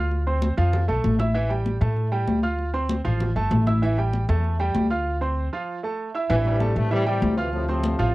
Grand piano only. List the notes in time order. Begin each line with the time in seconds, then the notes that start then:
Already playing: F4 F5 F6
0.27 C4 C5 C6
0.57 F3 F4 F5
0.88 A3 A4 A5
1.19 E4 E5 E6
1.35 E3 E4 E5
1.50 G3 G4 G5
1.81 A3 A4 A5
2.12 G3 G4 G5
2.43 F4 F5 F6
2.74 C4 C5 C6
3.05 F3 F4 F5
3.36 A3 A4 A5
3.66 E4 E5 E6
3.82 E3 E4 E5
3.98 G3 G4 G5
4.29 A3 A4 A5
4.60 G3 G4 G5
4.90 F4 F5 F6
5.21 C4 C5 C6
5.53 F3 F4 F5
5.83 A3 A4 A5
6.15 E4 E5 E6
6.30 E3 E4 E5
6.60 A3 A4 A5
6.91 E3 E4 E5
7.06 G3 G4 G5
7.38 F4 F5 F6
7.69 C4 C5 C6
7.99 F3 F4 F5